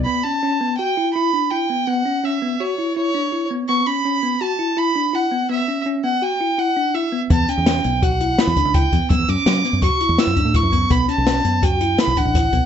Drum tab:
HH |----------|----------|----------|----------|
SD |----------|----------|----------|----------|
BD |----------|----------|----------|----------|

HH |xxxxxxxxxx|xxxxxxxxxx|xxxxxxxxxx|
SD |--o---o---|--oo--o---|--o---o-o-|
BD |o---o--ooo|o---o--ooo|o---o--ooo|